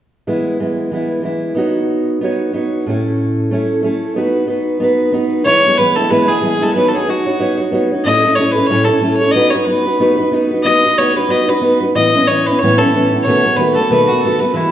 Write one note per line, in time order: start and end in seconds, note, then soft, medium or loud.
0.27 0.59 E3 medium
0.27 0.59 G#3 medium
0.27 0.61 B3 medium
0.27 0.61 E4 medium
0.60 0.90 E3 soft
0.60 0.92 G#3 soft
0.60 0.92 B3 soft
0.60 0.94 E4 soft
0.91 1.21 E3 medium
0.91 1.22 G#3 soft
0.91 1.23 B3 soft
0.91 1.24 E4 medium
1.22 1.54 E3 soft
1.22 1.56 G#3 soft
1.22 1.53 B3 soft
1.22 1.57 E4 medium
1.55 2.20 B3 medium
1.55 2.21 D#4 medium
1.55 2.22 F#4 medium
1.59 2.23 C#5 medium
2.21 2.52 B3 medium
2.21 2.53 D#4 medium
2.21 2.54 F#4 medium
2.21 2.55 C#5 medium
2.53 2.86 B3 soft
2.53 2.87 D#4 soft
2.53 2.87 F#4 soft
2.53 2.88 C#5 medium
2.86 3.51 A2 medium
2.86 3.50 A3 medium
2.86 3.51 C#4 medium
2.86 3.52 E4 medium
2.91 3.53 A4 medium
3.51 3.81 A3 soft
3.51 3.83 C#4 medium
3.51 3.84 E4 medium
3.51 3.85 A4 medium
3.83 4.16 A3 soft
3.83 4.16 C#4 medium
3.83 4.17 E4 medium
3.83 4.17 A4 medium
4.16 4.46 B3 medium
4.16 4.46 D#4 medium
4.16 4.48 F#4 medium
4.16 4.49 B4 medium
4.47 4.79 B3 soft
4.47 4.80 D#4 medium
4.47 4.81 F#4 soft
4.47 4.83 B4 medium
4.80 5.12 B3 medium
4.80 5.12 D#4 medium
4.80 5.13 F#4 medium
4.80 5.15 B4 medium
5.12 5.45 B3 medium
5.12 5.45 D#4 medium
5.12 5.46 F#4 medium
5.12 5.46 B4 medium
5.45 5.64 E3 medium
5.45 5.64 G#3 medium
5.45 5.65 B3 medium
5.45 5.63 E4 medium
5.45 5.79 C#5 loud
5.64 5.78 G#3 soft
5.64 5.79 B3 soft
5.64 5.78 E4 soft
5.78 5.97 E3 soft
5.78 5.97 G#3 soft
5.78 5.98 B3 medium
5.78 5.95 E4 medium
5.78 5.97 B4 medium
5.96 6.10 B3 soft
5.96 6.11 E4 soft
5.96 6.12 A4 medium
6.00 6.09 G#3 soft
6.10 6.29 E3 medium
6.10 6.29 G#3 medium
6.10 6.29 B3 medium
6.10 6.27 E4 medium
6.10 6.30 B4 medium
6.28 6.42 G#3 soft
6.28 6.42 B3 soft
6.28 6.43 E4 soft
6.28 6.64 G#4 medium
6.41 6.61 E3 soft
6.41 6.62 G#3 medium
6.41 6.61 B3 medium
6.41 6.60 E4 soft
6.61 6.76 G#3 soft
6.61 6.74 B3 soft
6.61 6.75 E4 soft
6.61 6.74 A4 medium
6.74 6.94 B3 medium
6.74 6.94 D#4 medium
6.74 6.95 F#4 medium
6.74 6.90 B4 medium
6.74 6.93 C#5 medium
6.88 6.96 A4 soft
6.94 7.07 D#4 soft
6.94 7.08 F#4 soft
6.94 7.11 G#4 medium
6.94 7.08 C#5 soft
7.07 7.26 B3 soft
7.07 7.27 D#4 soft
7.07 7.60 F#4 medium
7.07 7.27 F#4 medium
7.07 7.25 C#5 medium
7.26 7.38 D#4 soft
7.26 7.39 F#4 soft
7.26 7.40 C#5 soft
7.39 7.58 B3 medium
7.39 7.59 D#4 medium
7.39 7.59 F#4 medium
7.39 7.56 C#5 medium
7.58 7.71 D#4 soft
7.58 7.73 F#4 medium
7.58 7.72 C#5 soft
7.72 7.91 B3 medium
7.72 7.91 D#4 medium
7.72 7.92 F#4 medium
7.72 7.91 C#5 medium
7.92 8.06 D#4 soft
7.92 8.06 F#4 soft
7.92 8.06 C#5 soft
8.04 8.24 A2 medium
8.04 8.24 A3 medium
8.04 8.24 C#4 medium
8.04 8.25 E4 medium
8.04 8.24 A4 medium
8.04 8.37 D#5 loud
8.25 8.37 C#4 soft
8.25 8.39 E4 soft
8.25 8.38 A4 soft
8.35 8.56 A3 soft
8.35 8.57 C#4 medium
8.35 8.53 C#5 medium
8.40 8.56 E4 medium
8.40 8.54 A4 medium
8.52 8.70 A4 soft
8.52 8.68 B4 medium
8.57 8.70 C#4 soft
8.57 8.70 E4 soft
8.66 8.89 A2 medium
8.66 8.86 C#5 loud
8.71 8.89 A3 medium
8.71 8.89 C#4 medium
8.71 8.89 E4 medium
8.71 8.87 A4 medium
8.84 9.16 A4 medium
8.84 9.02 A4 soft
8.90 9.01 C#4 soft
8.90 9.03 E4 soft
9.01 9.20 A3 soft
9.01 9.21 C#4 medium
9.01 9.22 E4 medium
9.01 9.20 A4 medium
9.17 9.33 C#5 medium
9.21 9.35 C#4 soft
9.21 9.36 E4 soft
9.21 9.35 A4 soft
9.31 9.53 B3 medium
9.31 9.52 D#5 medium
9.36 9.54 D#4 medium
9.36 9.53 F#4 medium
9.36 9.52 B4 medium
9.50 9.67 B4 soft
9.50 9.66 C#5 medium
9.55 9.66 D#4 soft
9.55 9.68 F#4 soft
9.65 9.86 B3 medium
9.65 9.86 D#4 medium
9.65 9.86 F#4 soft
9.65 10.17 B4 medium
9.70 9.85 B4 soft
9.86 10.00 D#4 soft
9.86 10.00 F#4 soft
9.86 10.00 B4 soft
10.00 10.18 B3 medium
10.00 10.19 D#4 medium
10.00 10.17 F#4 medium
10.00 10.16 B4 medium
10.17 10.32 D#4 soft
10.17 10.32 F#4 soft
10.17 10.32 B4 medium
10.32 10.51 B3 medium
10.32 10.51 D#4 medium
10.32 10.51 F#4 medium
10.32 10.50 B4 medium
10.51 10.65 D#4 soft
10.51 10.66 F#4 soft
10.51 10.65 B4 medium
10.63 10.83 B3 medium
10.63 10.84 D#4 medium
10.63 10.84 F#4 soft
10.63 11.00 D#5 loud
10.67 10.82 B4 medium
10.98 11.16 B3 soft
10.98 11.17 D#4 soft
10.98 11.16 F#4 medium
10.98 11.14 B4 soft
10.98 11.18 C#5 medium
11.16 11.28 D#4 soft
11.16 11.29 F#4 soft
11.16 11.30 B4 soft
11.16 11.32 B4 medium
11.29 11.48 B3 medium
11.29 11.48 D#4 medium
11.29 11.48 F#4 medium
11.29 11.46 B4 medium
11.29 11.51 D#5 medium
11.48 11.61 D#4 soft
11.48 11.62 F#4 soft
11.48 11.62 B4 soft
11.48 11.81 B4 medium
11.61 11.80 B3 medium
11.61 11.81 D#4 soft
11.61 11.81 F#4 medium
11.61 11.79 B4 medium
11.80 11.95 D#4 soft
11.80 11.96 F#4 soft
11.80 11.94 B4 soft
11.94 12.13 A2 medium
11.94 12.14 E3 medium
11.94 12.14 B3 medium
11.94 12.14 C#4 medium
11.94 12.12 E4 medium
11.94 12.29 D#5 loud
12.14 12.28 B3 soft
12.14 12.28 C#4 soft
12.14 12.27 E4 soft
12.27 12.46 E3 medium
12.27 12.47 B3 soft
12.27 12.47 C#4 medium
12.27 12.47 E4 medium
12.27 12.48 C#5 medium
12.46 12.62 C#4 soft
12.46 12.61 E4 soft
12.46 12.60 B4 medium
12.52 12.63 B3 soft
12.59 12.80 A2 medium
12.59 12.80 E3 medium
12.59 12.80 C#5 loud
12.64 12.81 B3 medium
12.64 12.81 C#4 medium
12.64 12.80 E4 medium
12.78 12.94 E4 medium
12.78 13.11 A4 medium
12.83 12.95 B3 soft
12.83 12.94 C#4 soft
12.95 13.12 E3 medium
12.95 13.13 B3 soft
12.95 13.13 C#4 medium
12.95 13.11 E4 medium
13.13 13.27 B3 soft
13.13 13.27 C#4 soft
13.13 13.26 E4 soft
13.23 13.44 B2 medium
13.23 13.58 C#5 medium
13.27 13.45 D#3 medium
13.27 13.45 A3 medium
13.27 13.45 B3 medium
13.27 13.43 F#4 medium
13.44 13.57 F#4 soft
13.56 13.76 D#3 medium
13.56 13.77 A3 medium
13.56 13.77 B3 soft
13.56 13.71 B4 medium
13.60 13.76 F#4 medium
13.73 13.90 F#4 soft
13.73 13.88 A4 medium
13.73 13.76 B4 medium
13.79 13.91 A3 soft
13.79 13.90 B3 soft
13.88 14.09 B2 medium
13.88 14.09 D#3 medium
13.88 14.09 A3 medium
13.88 14.09 B3 medium
13.88 14.09 B4 medium
13.93 14.08 F#4 medium
14.07 14.20 F#4 medium
14.07 14.23 F#4 soft
14.12 14.24 A3 medium
14.12 14.24 B3 soft
14.21 14.42 D#3 soft
14.21 14.42 A4 medium
14.25 14.41 A3 medium
14.25 14.42 B3 medium
14.25 14.40 F#4 medium
14.40 14.55 A3 soft
14.40 14.55 F#4 soft
14.40 14.56 B4 medium
14.44 14.54 B3 soft
14.54 14.71 E3 medium
14.54 14.71 G#3 medium
14.54 14.71 B3 medium
14.54 14.71 E4 medium
14.54 14.71 F#4 medium